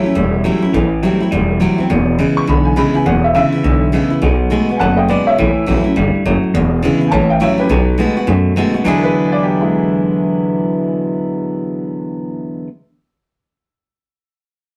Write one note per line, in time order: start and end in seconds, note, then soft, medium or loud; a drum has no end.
0.00 0.13 A2 loud
0.00 0.13 A2 medium
0.00 0.14 F#3 medium
0.00 0.15 E4 medium
0.00 0.69 C#5 medium
0.00 0.71 E5 loud
0.04 0.16 C#4 soft
0.04 muted upright bass stroke medium
0.15 0.49 E1 medium
0.15 0.71 E2 medium
0.15 0.42 A2 medium
0.15 0.43 G3 medium
0.44 0.71 A2 medium
0.44 0.62 E3 medium
0.44 0.72 F#3 medium
0.44 0.62 G3 medium
0.44 0.63 C#4 medium
0.44 0.61 E4 medium
0.62 0.74 C#4 soft
0.62 0.73 E4 medium
0.62 muted upright bass stroke medium
0.73 1.07 A1 loud
0.73 1.00 A2 medium
0.73 1.30 A2 medium
0.73 1.01 E3 medium
1.02 1.30 A2 medium
1.02 1.20 E3 medium
1.02 1.30 F#3 medium
1.02 1.21 G3 medium
1.02 1.21 C4 medium
1.02 1.19 E4 medium
1.20 1.32 C4 medium
1.20 1.31 E4 medium
1.20 muted upright bass stroke medium
1.31 1.65 E1 medium
1.31 1.88 E2 medium
1.31 1.58 A2 medium
1.31 1.59 G3 loud
1.60 1.88 A2 medium
1.60 1.78 E3 medium
1.60 1.88 F#3 medium
1.60 1.78 G3 medium
1.60 1.79 C4 loud
1.60 1.77 E4 medium
1.78 1.90 C4 medium
1.78 1.89 E4 medium
1.78 muted upright bass stroke medium
1.90 2.23 E1 loud
1.90 2.17 E2 medium
1.90 2.46 E2 medium
1.90 2.17 B2 loud
2.18 2.46 E2 medium
2.18 2.46 C#3 medium
2.18 2.47 G#3 medium
2.18 2.47 B3 medium
2.18 2.48 E4 medium
2.37 2.48 C#6 loud
2.37 muted upright bass stroke medium
2.47 2.81 B1 medium
2.47 2.75 E2 medium
2.47 3.04 B2 medium
2.47 2.75 D3 loud
2.47 2.66 B5 medium
2.65 2.76 G#5 medium
2.76 3.04 E2 medium
2.76 3.04 C#3 loud
2.76 2.94 D3 medium
2.76 2.94 G#3 loud
2.76 2.95 B3 medium
2.76 2.93 E4 medium
2.76 2.94 B5 medium
2.94 3.06 B3 soft
2.94 3.05 E4 medium
2.94 3.06 G#5 medium
2.94 muted upright bass stroke medium
3.06 3.39 E1 medium
3.06 3.33 E2 medium
3.06 3.62 E2 medium
3.06 3.33 B2 medium
3.06 3.24 F#5 medium
3.24 3.34 E5 medium
3.35 3.62 E2 medium
3.35 3.62 C#3 loud
3.35 3.52 D3 medium
3.35 3.53 G#3 medium
3.35 3.53 B3 medium
3.35 3.51 E4 medium
3.35 4.20 E5 loud
3.52 3.65 B3 medium
3.52 3.63 E4 medium
3.52 muted upright bass stroke medium
3.63 3.97 B1 medium
3.63 3.91 E2 medium
3.63 4.20 B2 medium
3.63 3.91 D3 medium
3.92 4.20 E2 medium
3.92 4.20 C#3 medium
3.92 4.10 D3 medium
3.92 4.10 G#3 medium
3.92 4.11 B3 medium
3.92 4.09 E4 medium
4.10 4.23 B3 medium
4.10 4.21 E4 medium
4.10 muted upright bass stroke medium
4.22 4.55 B1 loud
4.22 4.78 B2 medium
4.22 4.49 B2 medium
4.22 4.49 F#3 medium
4.50 4.78 B2 medium
4.50 4.68 D#3 medium
4.50 4.78 G#3 medium
4.50 4.68 A3 medium
4.50 4.69 B3 medium
4.50 4.68 F#4 medium
4.69 4.81 B3 soft
4.69 4.79 F#4 medium
4.69 muted upright bass stroke medium
4.76 4.97 F#5 loud
4.76 4.78 G#5 medium
4.80 5.13 F#1 medium
4.80 5.36 F#2 medium
4.80 5.07 B2 medium
4.80 5.07 A3 loud
4.80 4.98 A5 loud
4.97 5.08 D#5 medium
4.97 5.08 G5 medium
5.08 5.36 B2 medium
5.08 5.37 D#3 medium
5.08 5.36 G#3 medium
5.08 5.38 B3 medium
5.08 5.38 F#4 medium
5.08 5.26 B4 medium
5.08 5.27 D5 medium
5.27 5.81 C#5 medium
5.27 5.83 E5 loud
5.27 muted upright bass stroke medium
5.38 5.52 A1 loud
5.38 5.94 A2 medium
5.38 5.65 A2 medium
5.38 5.65 E3 loud
5.58 muted upright bass stroke medium
5.66 5.83 A1 medium
5.66 5.94 A2 medium
5.66 5.84 E3 medium
5.66 5.94 F#3 medium
5.66 5.85 G3 medium
5.66 5.85 C#4 medium
5.66 5.83 E4 medium
5.84 5.96 C#4 soft
5.84 5.95 E4 medium
5.84 muted upright bass stroke medium
5.96 6.12 G1 medium
5.96 6.24 G2 medium
5.96 6.23 A2 medium
5.96 6.23 G3 loud
6.15 muted upright bass stroke medium
6.25 6.41 F#1 medium
6.25 6.53 F#2 medium
6.25 6.52 A2 medium
6.25 6.52 F#3 medium
6.43 muted upright bass stroke medium
6.54 6.87 E1 medium
6.54 6.81 E2 medium
6.54 7.10 E2 loud
6.54 6.81 B2 loud
6.83 7.10 E2 medium
6.83 7.10 C#3 medium
6.83 7.00 D3 medium
6.83 7.01 G#3 medium
6.83 7.01 B3 medium
6.83 7.00 E4 loud
7.01 7.13 B3 soft
7.01 7.12 E4 medium
7.01 muted upright bass stroke medium
7.07 7.28 C#5 medium
7.07 7.10 G#5 medium
7.11 7.45 A1 loud
7.11 7.68 A2 medium
7.11 7.39 A2 medium
7.11 7.39 E3 loud
7.11 7.29 A5 loud
7.30 7.40 E5 medium
7.30 7.41 G5 medium
7.40 7.68 A2 medium
7.40 7.58 E3 medium
7.40 7.68 F#3 loud
7.40 7.58 G3 medium
7.40 7.58 C#4 medium
7.40 7.57 E4 loud
7.40 7.58 C#5 medium
7.40 7.59 E5 medium
7.58 7.70 C#4 soft
7.58 7.69 E4 medium
7.58 8.13 G4 medium
7.58 8.15 B4 medium
7.58 muted upright bass stroke medium
7.69 8.03 B1 loud
7.69 8.25 B2 medium
7.69 7.97 B2 medium
7.69 7.97 F#3 medium
7.98 8.25 B2 medium
7.98 8.16 D#3 medium
7.98 8.26 G#3 medium
7.98 8.16 A3 medium
7.98 8.16 B3 medium
7.98 8.15 F#4 medium
8.17 8.28 B3 soft
8.17 8.27 F#4 medium
8.17 muted upright bass stroke medium
8.27 8.83 F#2 medium
8.27 8.61 F#2 medium
8.27 8.54 B2 medium
8.27 8.54 A3 medium
8.56 8.83 B2 medium
8.56 8.74 D#3 medium
8.56 8.84 G#3 medium
8.56 8.74 A3 medium
8.56 8.75 B3 medium
8.56 8.73 F#4 medium
8.74 8.86 B3 medium
8.74 8.85 F#4 medium
8.74 muted upright bass stroke medium
8.84 12.67 E2 medium
8.84 12.63 E2 loud
8.84 12.67 B2 medium
8.84 12.67 D3 loud
8.84 12.66 E3 medium
8.84 12.67 F#3 loud
8.84 12.68 G#3 medium
8.84 12.68 B3 medium
8.84 12.68 D4 loud
8.84 12.68 E4 loud
8.88 12.68 G#4 loud
8.99 9.01 A#4 medium
9.04 9.32 B4 loud
9.32 9.43 D5 medium
9.43 9.61 G4 medium
9.61 12.63 G#3 medium
9.61 12.63 E4 medium